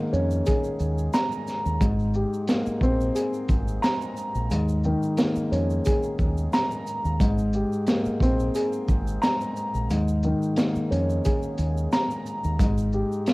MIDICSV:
0, 0, Header, 1, 5, 480
1, 0, Start_track
1, 0, Key_signature, -4, "major"
1, 0, Tempo, 674157
1, 1288, Time_signature, 4, 2, 24, 8
1, 9495, End_track
2, 0, Start_track
2, 0, Title_t, "Upright piano"
2, 0, Program_c, 0, 0
2, 0, Control_c, 0, 64, 127
2, 0, Note_on_c, 0, 44, 82
2, 0, Note_on_c, 0, 51, 77
2, 0, Note_on_c, 0, 58, 79
2, 89, Note_on_c, 0, 61, 88
2, 330, Note_on_c, 0, 68, 83
2, 809, Note_on_c, 0, 82, 106
2, 1274, Note_off_c, 0, 44, 0
2, 1285, Note_on_c, 0, 44, 84
2, 1286, Note_off_c, 0, 58, 0
2, 1288, Note_off_c, 0, 82, 0
2, 1289, Note_off_c, 0, 61, 0
2, 1289, Note_off_c, 0, 68, 0
2, 1292, Note_off_c, 0, 51, 0
2, 1299, Control_c, 0, 64, 0
2, 1437, Control_c, 0, 64, 127
2, 1534, Note_on_c, 0, 67, 72
2, 1771, Note_on_c, 0, 58, 83
2, 2015, Note_on_c, 0, 60, 98
2, 2244, Note_on_c, 0, 68, 82
2, 2721, Note_on_c, 0, 82, 107
2, 3202, Note_off_c, 0, 44, 0
2, 3205, Note_off_c, 0, 82, 0
2, 3206, Note_off_c, 0, 68, 0
2, 3209, Note_off_c, 0, 58, 0
2, 3211, Note_off_c, 0, 60, 0
2, 3211, Note_off_c, 0, 67, 0
2, 3212, Note_on_c, 0, 44, 82
2, 3216, Control_c, 0, 64, 0
2, 3354, Control_c, 0, 64, 127
2, 3455, Note_on_c, 0, 51, 77
2, 3686, Note_on_c, 0, 58, 81
2, 3929, Note_on_c, 0, 61, 86
2, 4171, Note_on_c, 0, 68, 81
2, 4651, Note_on_c, 0, 82, 109
2, 5116, Note_off_c, 0, 44, 0
2, 5126, Note_on_c, 0, 44, 87
2, 5127, Note_off_c, 0, 58, 0
2, 5129, Note_off_c, 0, 61, 0
2, 5130, Note_off_c, 0, 68, 0
2, 5130, Note_off_c, 0, 82, 0
2, 5131, Note_off_c, 0, 51, 0
2, 5136, Control_c, 0, 64, 0
2, 5278, Control_c, 0, 64, 127
2, 5375, Note_on_c, 0, 67, 72
2, 5613, Note_on_c, 0, 58, 81
2, 5856, Note_on_c, 0, 60, 98
2, 6086, Note_on_c, 0, 68, 80
2, 6563, Note_on_c, 0, 82, 109
2, 7043, Note_off_c, 0, 44, 0
2, 7046, Note_off_c, 0, 82, 0
2, 7047, Note_off_c, 0, 68, 0
2, 7051, Note_off_c, 0, 58, 0
2, 7051, Note_off_c, 0, 67, 0
2, 7052, Note_off_c, 0, 60, 0
2, 7054, Note_on_c, 0, 44, 83
2, 7057, Control_c, 0, 64, 0
2, 7184, Control_c, 0, 64, 127
2, 7294, Note_on_c, 0, 51, 79
2, 7524, Note_on_c, 0, 58, 77
2, 7767, Note_on_c, 0, 61, 87
2, 8010, Note_on_c, 0, 68, 82
2, 8491, Note_on_c, 0, 82, 105
2, 8954, Note_off_c, 0, 44, 0
2, 8965, Note_on_c, 0, 44, 87
2, 8966, Note_off_c, 0, 58, 0
2, 8968, Note_off_c, 0, 61, 0
2, 8969, Note_off_c, 0, 68, 0
2, 8969, Note_off_c, 0, 82, 0
2, 8971, Note_off_c, 0, 51, 0
2, 8977, Control_c, 0, 64, 0
2, 9092, Control_c, 0, 64, 127
2, 9212, Note_on_c, 0, 67, 74
2, 9450, Note_on_c, 0, 58, 84
2, 9495, Note_off_c, 0, 44, 0
2, 9495, Note_off_c, 0, 58, 0
2, 9495, Note_off_c, 0, 67, 0
2, 9495, End_track
3, 0, Start_track
3, 0, Title_t, "Fingered electric bass"
3, 0, Program_c, 1, 33
3, 92, Note_on_c, 1, 41, 98
3, 288, Note_off_c, 1, 41, 0
3, 570, Note_on_c, 1, 39, 95
3, 767, Note_off_c, 1, 39, 0
3, 1180, Note_on_c, 1, 39, 93
3, 1270, Note_off_c, 1, 39, 0
3, 1289, Note_on_c, 1, 32, 110
3, 1593, Note_off_c, 1, 32, 0
3, 2002, Note_on_c, 1, 34, 95
3, 2202, Note_off_c, 1, 34, 0
3, 2487, Note_on_c, 1, 32, 91
3, 2685, Note_off_c, 1, 32, 0
3, 3099, Note_on_c, 1, 34, 87
3, 3189, Note_off_c, 1, 34, 0
3, 3211, Note_on_c, 1, 39, 115
3, 3514, Note_off_c, 1, 39, 0
3, 3930, Note_on_c, 1, 41, 97
3, 4126, Note_off_c, 1, 41, 0
3, 4408, Note_on_c, 1, 39, 92
3, 4605, Note_off_c, 1, 39, 0
3, 5020, Note_on_c, 1, 39, 95
3, 5110, Note_off_c, 1, 39, 0
3, 5129, Note_on_c, 1, 32, 109
3, 5433, Note_off_c, 1, 32, 0
3, 5843, Note_on_c, 1, 34, 96
3, 6042, Note_off_c, 1, 34, 0
3, 6327, Note_on_c, 1, 32, 89
3, 6525, Note_off_c, 1, 32, 0
3, 6940, Note_on_c, 1, 34, 88
3, 7030, Note_off_c, 1, 34, 0
3, 7050, Note_on_c, 1, 39, 118
3, 7353, Note_off_c, 1, 39, 0
3, 7772, Note_on_c, 1, 41, 92
3, 7968, Note_off_c, 1, 41, 0
3, 8251, Note_on_c, 1, 39, 93
3, 8447, Note_off_c, 1, 39, 0
3, 8862, Note_on_c, 1, 39, 96
3, 8951, Note_off_c, 1, 39, 0
3, 8969, Note_on_c, 1, 32, 110
3, 9273, Note_off_c, 1, 32, 0
3, 9495, End_track
4, 0, Start_track
4, 0, Title_t, "Muted fingered electric bass strokes"
4, 1900, Note_on_c, 9, 29, 51
4, 1971, Note_off_c, 9, 29, 0
4, 3820, Note_on_c, 9, 29, 50
4, 3891, Note_off_c, 9, 29, 0
4, 5740, Note_on_c, 9, 29, 50
4, 5811, Note_off_c, 9, 29, 0
4, 7661, Note_on_c, 9, 29, 50
4, 7732, Note_off_c, 9, 29, 0
4, 9495, End_track
5, 0, Start_track
5, 0, Title_t, "Drums"
5, 95, Note_on_c, 9, 82, 60
5, 166, Note_off_c, 9, 82, 0
5, 217, Note_on_c, 9, 82, 50
5, 289, Note_off_c, 9, 82, 0
5, 325, Note_on_c, 9, 82, 82
5, 330, Note_on_c, 9, 42, 79
5, 339, Note_on_c, 9, 36, 88
5, 397, Note_off_c, 9, 82, 0
5, 401, Note_off_c, 9, 42, 0
5, 411, Note_off_c, 9, 36, 0
5, 453, Note_on_c, 9, 82, 49
5, 524, Note_off_c, 9, 82, 0
5, 563, Note_on_c, 9, 82, 49
5, 567, Note_off_c, 9, 82, 0
5, 567, Note_on_c, 9, 82, 49
5, 638, Note_off_c, 9, 82, 0
5, 699, Note_on_c, 9, 82, 54
5, 770, Note_off_c, 9, 82, 0
5, 805, Note_on_c, 9, 82, 73
5, 813, Note_on_c, 9, 38, 121
5, 814, Note_on_c, 9, 42, 85
5, 877, Note_off_c, 9, 82, 0
5, 884, Note_off_c, 9, 38, 0
5, 885, Note_off_c, 9, 42, 0
5, 938, Note_on_c, 9, 82, 50
5, 1010, Note_off_c, 9, 82, 0
5, 1049, Note_on_c, 9, 82, 57
5, 1052, Note_off_c, 9, 82, 0
5, 1052, Note_on_c, 9, 82, 57
5, 1056, Note_on_c, 9, 38, 34
5, 1123, Note_off_c, 9, 82, 0
5, 1127, Note_off_c, 9, 38, 0
5, 1179, Note_on_c, 9, 82, 50
5, 1250, Note_off_c, 9, 82, 0
5, 1287, Note_on_c, 9, 36, 112
5, 1290, Note_on_c, 9, 82, 66
5, 1293, Note_on_c, 9, 42, 90
5, 1359, Note_off_c, 9, 36, 0
5, 1361, Note_off_c, 9, 82, 0
5, 1364, Note_off_c, 9, 42, 0
5, 1418, Note_on_c, 9, 82, 53
5, 1489, Note_off_c, 9, 82, 0
5, 1523, Note_on_c, 9, 82, 56
5, 1594, Note_off_c, 9, 82, 0
5, 1663, Note_on_c, 9, 82, 51
5, 1735, Note_off_c, 9, 82, 0
5, 1762, Note_on_c, 9, 42, 72
5, 1769, Note_on_c, 9, 82, 78
5, 1771, Note_on_c, 9, 38, 118
5, 1833, Note_off_c, 9, 42, 0
5, 1840, Note_off_c, 9, 82, 0
5, 1843, Note_off_c, 9, 38, 0
5, 1895, Note_on_c, 9, 82, 50
5, 1967, Note_off_c, 9, 82, 0
5, 2001, Note_on_c, 9, 36, 98
5, 2014, Note_on_c, 9, 82, 62
5, 2072, Note_off_c, 9, 36, 0
5, 2085, Note_off_c, 9, 82, 0
5, 2142, Note_on_c, 9, 82, 50
5, 2213, Note_off_c, 9, 82, 0
5, 2248, Note_on_c, 9, 82, 82
5, 2250, Note_on_c, 9, 42, 78
5, 2319, Note_off_c, 9, 82, 0
5, 2321, Note_off_c, 9, 42, 0
5, 2375, Note_on_c, 9, 82, 50
5, 2447, Note_off_c, 9, 82, 0
5, 2482, Note_on_c, 9, 42, 50
5, 2482, Note_on_c, 9, 82, 50
5, 2486, Note_on_c, 9, 36, 96
5, 2488, Note_off_c, 9, 82, 0
5, 2488, Note_on_c, 9, 82, 49
5, 2553, Note_off_c, 9, 42, 0
5, 2557, Note_off_c, 9, 36, 0
5, 2559, Note_off_c, 9, 82, 0
5, 2620, Note_on_c, 9, 82, 54
5, 2691, Note_off_c, 9, 82, 0
5, 2727, Note_on_c, 9, 82, 70
5, 2734, Note_on_c, 9, 38, 118
5, 2736, Note_on_c, 9, 42, 83
5, 2798, Note_off_c, 9, 82, 0
5, 2805, Note_off_c, 9, 38, 0
5, 2807, Note_off_c, 9, 42, 0
5, 2858, Note_on_c, 9, 82, 49
5, 2929, Note_off_c, 9, 82, 0
5, 2968, Note_on_c, 9, 82, 59
5, 2972, Note_off_c, 9, 82, 0
5, 2972, Note_on_c, 9, 82, 55
5, 3044, Note_off_c, 9, 82, 0
5, 3098, Note_on_c, 9, 82, 51
5, 3169, Note_off_c, 9, 82, 0
5, 3208, Note_on_c, 9, 82, 65
5, 3214, Note_on_c, 9, 42, 91
5, 3279, Note_off_c, 9, 82, 0
5, 3285, Note_off_c, 9, 42, 0
5, 3337, Note_on_c, 9, 82, 54
5, 3408, Note_off_c, 9, 82, 0
5, 3443, Note_on_c, 9, 82, 59
5, 3515, Note_off_c, 9, 82, 0
5, 3580, Note_on_c, 9, 82, 48
5, 3651, Note_off_c, 9, 82, 0
5, 3682, Note_on_c, 9, 42, 72
5, 3686, Note_on_c, 9, 82, 77
5, 3691, Note_on_c, 9, 38, 116
5, 3753, Note_off_c, 9, 42, 0
5, 3757, Note_off_c, 9, 82, 0
5, 3763, Note_off_c, 9, 38, 0
5, 3814, Note_on_c, 9, 82, 52
5, 3885, Note_off_c, 9, 82, 0
5, 3935, Note_on_c, 9, 42, 60
5, 3935, Note_on_c, 9, 82, 61
5, 4006, Note_off_c, 9, 42, 0
5, 4006, Note_off_c, 9, 82, 0
5, 4059, Note_on_c, 9, 82, 51
5, 4130, Note_off_c, 9, 82, 0
5, 4165, Note_on_c, 9, 82, 81
5, 4170, Note_on_c, 9, 42, 83
5, 4179, Note_on_c, 9, 36, 87
5, 4236, Note_off_c, 9, 82, 0
5, 4241, Note_off_c, 9, 42, 0
5, 4250, Note_off_c, 9, 36, 0
5, 4292, Note_on_c, 9, 82, 50
5, 4364, Note_off_c, 9, 82, 0
5, 4403, Note_on_c, 9, 82, 49
5, 4406, Note_off_c, 9, 82, 0
5, 4406, Note_on_c, 9, 36, 93
5, 4406, Note_on_c, 9, 82, 47
5, 4477, Note_off_c, 9, 36, 0
5, 4477, Note_off_c, 9, 82, 0
5, 4539, Note_on_c, 9, 82, 52
5, 4610, Note_off_c, 9, 82, 0
5, 4647, Note_on_c, 9, 82, 72
5, 4654, Note_on_c, 9, 38, 122
5, 4656, Note_on_c, 9, 42, 85
5, 4718, Note_off_c, 9, 82, 0
5, 4726, Note_off_c, 9, 38, 0
5, 4727, Note_off_c, 9, 42, 0
5, 4778, Note_on_c, 9, 82, 50
5, 4849, Note_off_c, 9, 82, 0
5, 4889, Note_on_c, 9, 82, 58
5, 4893, Note_off_c, 9, 82, 0
5, 4893, Note_on_c, 9, 82, 57
5, 4964, Note_off_c, 9, 82, 0
5, 5019, Note_on_c, 9, 82, 51
5, 5090, Note_off_c, 9, 82, 0
5, 5128, Note_on_c, 9, 36, 111
5, 5128, Note_on_c, 9, 82, 66
5, 5134, Note_on_c, 9, 42, 89
5, 5199, Note_off_c, 9, 36, 0
5, 5200, Note_off_c, 9, 82, 0
5, 5206, Note_off_c, 9, 42, 0
5, 5256, Note_on_c, 9, 82, 55
5, 5327, Note_off_c, 9, 82, 0
5, 5363, Note_on_c, 9, 82, 58
5, 5435, Note_off_c, 9, 82, 0
5, 5501, Note_on_c, 9, 82, 51
5, 5573, Note_off_c, 9, 82, 0
5, 5602, Note_on_c, 9, 42, 71
5, 5605, Note_on_c, 9, 82, 77
5, 5612, Note_on_c, 9, 38, 119
5, 5674, Note_off_c, 9, 42, 0
5, 5677, Note_off_c, 9, 82, 0
5, 5683, Note_off_c, 9, 38, 0
5, 5734, Note_on_c, 9, 82, 51
5, 5805, Note_off_c, 9, 82, 0
5, 5841, Note_on_c, 9, 36, 96
5, 5855, Note_on_c, 9, 42, 61
5, 5855, Note_on_c, 9, 82, 60
5, 5913, Note_off_c, 9, 36, 0
5, 5927, Note_off_c, 9, 42, 0
5, 5927, Note_off_c, 9, 82, 0
5, 5979, Note_on_c, 9, 82, 52
5, 6050, Note_off_c, 9, 82, 0
5, 6085, Note_on_c, 9, 82, 84
5, 6091, Note_on_c, 9, 42, 78
5, 6156, Note_off_c, 9, 82, 0
5, 6162, Note_off_c, 9, 42, 0
5, 6214, Note_on_c, 9, 82, 51
5, 6285, Note_off_c, 9, 82, 0
5, 6322, Note_on_c, 9, 82, 50
5, 6326, Note_on_c, 9, 36, 96
5, 6327, Note_off_c, 9, 82, 0
5, 6327, Note_on_c, 9, 82, 50
5, 6397, Note_off_c, 9, 36, 0
5, 6398, Note_off_c, 9, 82, 0
5, 6460, Note_on_c, 9, 82, 53
5, 6531, Note_off_c, 9, 82, 0
5, 6567, Note_on_c, 9, 82, 72
5, 6574, Note_on_c, 9, 38, 124
5, 6576, Note_on_c, 9, 42, 82
5, 6638, Note_off_c, 9, 82, 0
5, 6645, Note_off_c, 9, 38, 0
5, 6647, Note_off_c, 9, 42, 0
5, 6699, Note_on_c, 9, 82, 50
5, 6770, Note_off_c, 9, 82, 0
5, 6809, Note_on_c, 9, 82, 57
5, 6812, Note_off_c, 9, 82, 0
5, 6812, Note_on_c, 9, 82, 57
5, 6883, Note_off_c, 9, 82, 0
5, 6938, Note_on_c, 9, 82, 49
5, 7009, Note_off_c, 9, 82, 0
5, 7049, Note_on_c, 9, 82, 65
5, 7053, Note_on_c, 9, 42, 87
5, 7120, Note_off_c, 9, 82, 0
5, 7124, Note_off_c, 9, 42, 0
5, 7178, Note_on_c, 9, 82, 56
5, 7249, Note_off_c, 9, 82, 0
5, 7284, Note_on_c, 9, 82, 57
5, 7355, Note_off_c, 9, 82, 0
5, 7422, Note_on_c, 9, 82, 49
5, 7493, Note_off_c, 9, 82, 0
5, 7521, Note_on_c, 9, 42, 73
5, 7529, Note_on_c, 9, 82, 77
5, 7531, Note_on_c, 9, 38, 118
5, 7593, Note_off_c, 9, 42, 0
5, 7601, Note_off_c, 9, 82, 0
5, 7602, Note_off_c, 9, 38, 0
5, 7656, Note_on_c, 9, 82, 51
5, 7728, Note_off_c, 9, 82, 0
5, 7775, Note_on_c, 9, 42, 61
5, 7775, Note_on_c, 9, 82, 60
5, 7846, Note_off_c, 9, 42, 0
5, 7846, Note_off_c, 9, 82, 0
5, 7901, Note_on_c, 9, 82, 51
5, 7972, Note_off_c, 9, 82, 0
5, 8008, Note_on_c, 9, 82, 85
5, 8011, Note_on_c, 9, 42, 82
5, 8019, Note_on_c, 9, 36, 89
5, 8080, Note_off_c, 9, 82, 0
5, 8082, Note_off_c, 9, 42, 0
5, 8090, Note_off_c, 9, 36, 0
5, 8136, Note_on_c, 9, 82, 49
5, 8207, Note_off_c, 9, 82, 0
5, 8244, Note_on_c, 9, 42, 52
5, 8244, Note_on_c, 9, 82, 49
5, 8250, Note_off_c, 9, 82, 0
5, 8250, Note_on_c, 9, 82, 50
5, 8315, Note_off_c, 9, 42, 0
5, 8321, Note_off_c, 9, 82, 0
5, 8383, Note_on_c, 9, 82, 53
5, 8454, Note_off_c, 9, 82, 0
5, 8488, Note_on_c, 9, 82, 73
5, 8493, Note_on_c, 9, 38, 115
5, 8495, Note_on_c, 9, 42, 85
5, 8559, Note_off_c, 9, 82, 0
5, 8564, Note_off_c, 9, 38, 0
5, 8566, Note_off_c, 9, 42, 0
5, 8620, Note_on_c, 9, 82, 49
5, 8691, Note_off_c, 9, 82, 0
5, 8730, Note_on_c, 9, 82, 58
5, 8732, Note_off_c, 9, 82, 0
5, 8732, Note_on_c, 9, 82, 57
5, 8804, Note_off_c, 9, 82, 0
5, 8857, Note_on_c, 9, 82, 51
5, 8928, Note_off_c, 9, 82, 0
5, 8967, Note_on_c, 9, 36, 114
5, 8968, Note_on_c, 9, 82, 68
5, 8973, Note_on_c, 9, 42, 88
5, 9038, Note_off_c, 9, 36, 0
5, 9039, Note_off_c, 9, 82, 0
5, 9045, Note_off_c, 9, 42, 0
5, 9096, Note_on_c, 9, 82, 56
5, 9168, Note_off_c, 9, 82, 0
5, 9203, Note_on_c, 9, 82, 57
5, 9274, Note_off_c, 9, 82, 0
5, 9341, Note_on_c, 9, 82, 49
5, 9412, Note_off_c, 9, 82, 0
5, 9443, Note_on_c, 9, 42, 71
5, 9447, Note_on_c, 9, 82, 74
5, 9452, Note_on_c, 9, 38, 124
5, 9495, Note_off_c, 9, 38, 0
5, 9495, Note_off_c, 9, 42, 0
5, 9495, Note_off_c, 9, 82, 0
5, 9495, End_track
0, 0, End_of_file